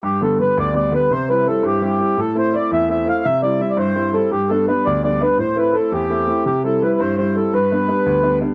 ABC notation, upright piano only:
X:1
M:6/8
L:1/8
Q:3/8=112
K:G
V:1 name="Upright piano"
G,, [D,G,B,] [D,G,B,] D,, [D,G,B,] [D,G,B,] | C, [G,CE] [G,CE] G,, [G,CE] [G,CE] | A,, [A,CE] [A,CE] E,, [A,CE] [A,CE] | C, [G,CE] [G,CE] G,, [G,CE] [G,CE] |
G,, [G,B,D] [G,B,D] D,, [G,B,D] [G,B,D] | A,, [A,CE] [A,CE] E,, [A,CE] [A,CE] | C, [G,CE] [G,CE] G,, [G,CE] [G,CE] | G,, [G,B,D] [G,B,D] D,, [G,B,D] [G,B,D] |]